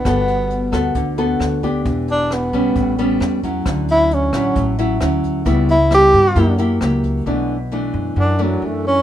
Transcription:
<<
  \new Staff \with { instrumentName = "Tenor saxophone" } { \time 4/4 \key d \major \tempo 4 = 133 b2 r2 | r8 d'8 b4. r4. | r8 e'8 cis'4. r4. | r8 e'8 g'4. r4. |
\key b \minor r2 d'8 fis8 a8 cis'8 | }
  \new Staff \with { instrumentName = "Nylon-string guitar" } { \time 4/4 \key d \major << { <b fis' a'>4. <b fis' a'>4 <b fis' a'>4 <b d' g'>8~ | <b d' g'>4. <g b cis'>4 <g b cis'>4 <fis cis' e'>8~ | <fis cis' e'>4. <fis cis' e'>4 <fis cis' e'>8 <fis cis' e'>4 | <g b e'>8 r8 <g b e'>8 r8 <ais e' g'>8 <ais e' g'>8 <ais e' g'>4 |
\key b \minor <e a d'>8 r8 <e a d'>4. <e a d'>4. | } \\ { g2 d2 | e2 a,2 | d2 a,2 | cis2 fis2 |
b,2 fis,2 | } >> }
  \new Staff \with { instrumentName = "Upright bass" } { \clef bass \time 4/4 \key d \major g,,4. d,8 d,4 d,4 | e,,4. b,,8 a,,4 e,4 | d,4. a,,8 a,,4 d,4 | cis,4. g,8 fis,4 cis,4 |
\key b \minor b,,4. fis,8 fis,4 fis,4 | }
  \new DrumStaff \with { instrumentName = "Drums" } \drummode { \time 4/4 <hh bd ss>8 hh8 hh8 <hh bd ss>8 <hh bd>8 hh8 <hh ss>8 <hh bd>8 | <hh bd>8 hh8 <hh ss>8 <hh bd>8 <hh bd>8 hh8 <hh ss>8 <hh bd>8 | <hh bd ss>8 hh8 hh8 <hh bd ss>8 <hh bd>8 hh8 <hh ss>8 <hh bd>8 | <hh bd>8 hh8 <hh ss>8 <hh bd>8 <hh bd>8 hh8 <hh ss>8 <hh bd>8 |
r4 r4 r4 r4 | }
>>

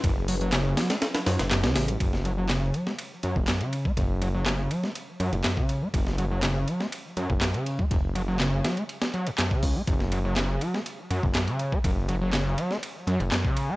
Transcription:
<<
  \new Staff \with { instrumentName = "Analog synth pad" } { \time 4/4 \key fis \minor \tempo 4 = 122 <fis cis' e' gis' b'>1 | r1 | r1 | r1 |
r1 | r1 | r1 | }
  \new Staff \with { instrumentName = "Acid bass" } { \clef bass \time 4/4 \key fis \minor fis,16 r16 fis16 fis16 cis8 fis16 a16 r8 fis16 fis,16 fis,16 cis8 a16 | fis,16 r16 fis16 fis16 cis8 fis16 a16 r8 fis16 fis,16 fis,16 cis8 a16 | fis,16 r16 fis16 fis16 cis8 fis16 a16 r8 fis16 fis,16 fis,16 cis8 a16 | fis,16 r16 fis16 fis16 cis8 fis16 a16 r8 fis16 fis,16 fis,16 cis8 a16 |
fis,16 r16 fis16 fis16 cis8 fis16 a16 r8 fis16 fis,16 fis,16 cis8 a16 | fis,16 r16 fis16 fis16 cis8 fis16 a16 r8 fis16 fis,16 fis,16 cis8 a16 | fis,16 r16 fis16 fis16 cis8 fis16 a16 r8 fis16 fis,16 fis,16 cis8 a16 | }
  \new Staff \with { instrumentName = "Detuned saw bass" } { \clef bass \time 4/4 \key fis \minor fis,,4. r4 fis,16 fis,,8 cis,16 a,,8 | fis,,4. r4 fis,16 fis,,16 r4 | fis,,4. r4 fis,16 fis,,16 r4 | fis,,4. r4 fis,16 fis,,16 r4 |
fis,,4. r2 cis,16 r16 | fis,,4. r4 fis,16 fis,,16 r4 | fis,,4. r4 fis,16 fis,,16 r4 | }
  \new DrumStaff \with { instrumentName = "Drums" } \drummode { \time 4/4 <hh bd cymr>8 <hho cymr>16 hh16 <hc hh cymr sn>8 <hho cymr sn>16 <hh cymr sn>16 <hh cymr sn>16 <cymr sn>16 <hho cymr sn>16 <hh cymr sn>16 <hc hh cymr sn>16 <cymr sn>16 <hho cymr sn>16 <hh cymr>16 | <bd cymr>16 sn16 cymr8 <hc cymr sn>8 cymr16 sn16 cymr8 cymr16 bd16 <hc cymr sn>16 cymr16 cymr16 bd16 | <bd cymr>8 cymr8 <hc cymr sn>8 cymr16 sn16 cymr8 cymr16 cymr16 <hc cymr sn>16 bd16 cymr8 | <bd cymr>16 sn16 cymr8 <hc cymr sn>8 cymr16 sn16 cymr8 cymr16 bd16 <hc cymr sn>16 cymr16 cymr16 bd16 |
<bd cymr>8 cymr8 <hc cymr sn>8 <cymr sn>16 cymr16 cymr16 <cymr sn>16 cymr16 cymr16 <hc cymr sn>16 bd16 <hho bd>8 | <bd cymr>16 sn16 cymr8 <hc cymr sn>8 cymr16 sn16 cymr8 cymr16 bd16 <hc cymr sn>16 cymr16 cymr16 bd16 | <bd cymr>8 cymr8 <hc cymr sn>8 cymr16 sn16 cymr8 cymr16 cymr16 <hc cymr sn>16 bd16 cymr8 | }
>>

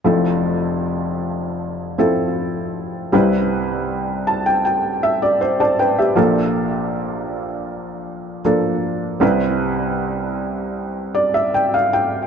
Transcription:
<<
  \new Staff \with { instrumentName = "Felt piano" } { \time 4/4 \key c \major \tempo 4 = 79 << { r1 | r4. a''16 g''16 g''8 e''16 d''16 c''16 <c'' d'' a''>16 <b' g''>16 <g' e''>16~ | <g' e''>16 r2. r8. | r2 r8 d''16 e''16 g''16 f''16 g''8 | } \\ { <f c' e' a'>2~ <f c' e' a'>8 <f c' e' a'>4. | <g c' e' b'>1 | <f bes d' a'>2. <f bes d' a'>4 | <g c' e' b'>1 | } >> }
  \new Staff \with { instrumentName = "Felt piano" } { \clef bass \time 4/4 \key c \major <f,, f,>1 | <c, c>1 | <bes,, bes,>1 | <c, c>1 | }
>>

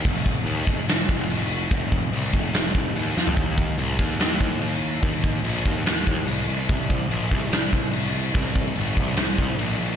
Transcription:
<<
  \new Staff \with { instrumentName = "Picked electric bass" } { \clef bass \time 4/4 \key c \minor \tempo 4 = 145 f,,4 ees,8 f,,8 f,,8 f,,8 f,,4 | f,,4 c,8 f,,8 f,,8 f,,8 ees,8 f,8 | ees,4 c,8 ees,8 ees,8 ees,8 ees,4 | ees,4 bes,,8 ees,8 ees,8 ees,8 c,8 c,8 |
c,4 bes,,8 c,8 c,8 c,8 c,4 | c,4 g,,8 c,8 c,8 c,8 bes,,8 bes,,8 | }
  \new DrumStaff \with { instrumentName = "Drums" } \drummode { \time 4/4 <cymc bd>8 bd8 cymc8 bd8 <cymc sn>8 bd8 cymc4 | <cymc bd>8 bd8 cymc8 bd8 <cymc sn>8 bd8 cymc8 sn16 tomfh16 | <cymc bd>8 bd8 cymc8 bd8 <cymc sn>8 bd8 cymc4 | <cymc bd>8 bd8 cymc8 bd8 <cymc sn>8 bd8 cymc4 |
<cymc bd>8 bd8 cymc8 bd8 <cymc sn>8 bd8 cymc4 | <cymc bd>8 bd8 cymc8 bd8 <cymc sn>8 bd8 cymc4 | }
>>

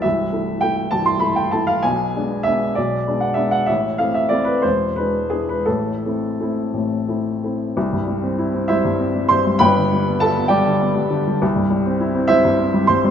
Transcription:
<<
  \new Staff \with { instrumentName = "Upright piano" } { \time 6/8 \key a \minor \tempo 4. = 65 e''4 g''8 a''16 c'''16 b''16 g''16 a''16 f''16 | gis''4 e''8 d''8. fis''16 e''16 fis''16 | e''8 f''16 e''16 d''16 b'16 c''8 b'8 gis'16 b'16 | a'4. r4. |
\key c \major r4. <e' c'' e''>4 <c'' c'''>8 | <b' g'' b''>4 <a' a''>8 <g' d'' g''>4. | r4. <e' c'' e''>4 <c'' c'''>8 | }
  \new Staff \with { instrumentName = "Upright piano" } { \time 6/8 \key a \minor <c,, c,>8 <a e'>8 <a e'>8 <c,, c,>8 <a e'>8 <a e'>8 | <b,, b,>8 <gis b d'>8 <gis b d'>8 <b,, b,>8 <gis b d'>8 <gis b d'>8 | <a,, a,>8 <a c' e'>8 <a c' e'>8 <e,, e,>8 <gis d' e'>8 <gis d' e'>8 | <a,, a,>8 <a c' e'>8 <a c' e'>8 <a,, a,>8 <a c' e'>8 <a c' e'>8 |
\key c \major c,16 g,16 g16 c'16 e'16 c'16 g16 g,16 c'16 g16 g,16 g16 | <g,, g,>16 d16 g16 b16 f'16 b16 g16 d16 b16 g16 d16 g16 | c,16 g,16 g16 c'16 e'16 c'16 g16 g,16 c'16 g16 g,16 g16 | }
>>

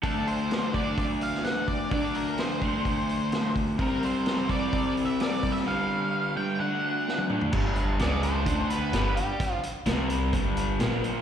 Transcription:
<<
  \new Staff \with { instrumentName = "Lead electric guitar" } { \time 4/4 \key d \dorian \tempo 4 = 128 a'8 c''4 d''8 d''8 f''8 fis''8 d''8 | d''8 bes'8 c''2~ c''8 r8 | bes'8 c''4 d''8~ \tuplet 3/2 { d''8. r16 e''8 d''4 e''8 } | f''4. g''8 fis''4. r8 |
r4 d''8 c''4 b'4 g'8~ | g'8 r2. r8 | }
  \new Staff \with { instrumentName = "Lead electric guitar" } { \time 4/4 \key d \dorian r1 | r1 | r1 | r1 |
r4 gis'8 d'4 b4 g8~ | g8 r2. r8 | }
  \new Staff \with { instrumentName = "Overdriven electric guitar" } { \clef bass \time 4/4 \key d \dorian <d a d'>4. <d a d'>2~ <d a d'>8 | <d a d'>4. <d a d'>2~ <d a d'>8 | <c g c'>4. <c g c'>2~ <c g c'>8 | <g, d g>4. <g, d g>8 <d a d'>4. <d a d'>8 |
<g, d g>4 <cis gis cis'>4 <d a d'>4 <g, d g>8 r8 | r4 <c g c'>4 <g, d g>4 <bes, f bes>4 | }
  \new Staff \with { instrumentName = "Upright bass" } { \clef bass \time 4/4 \key d \dorian r1 | r1 | r1 | r1 |
g,,4 cis,4 d,4 g,,8 r8 | r4 c,4 g,,4 bes,,4 | }
  \new DrumStaff \with { instrumentName = "Drums" } \drummode { \time 4/4 <hho bd>8 hho8 <hho sn>8 <hho bd>8 <hho bd>8 hho16 sn16 <hho sn>8 <hho bd>8 | <hho bd>8 hho8 <hho sn>8 <hho bd>8 <hho bd>8 hho8 <hho sn>8 <hho bd>8 | <hho bd>8 hho8 <hho sn>8 <hho bd>8 <hho bd>8 hho8 <hho sn>8 <hho bd>16 sn16 | r4 r4 r4 sn16 tommh16 toml16 tomfh16 |
<cymc bd>8 hh8 <hh sn>8 hh8 <hh bd>8 hh8 <hh sn>8 hh8 | <hh bd>8 hh8 <hh sn>8 hh8 <hh bd>8 hh8 <hh sn>8 hh8 | }
>>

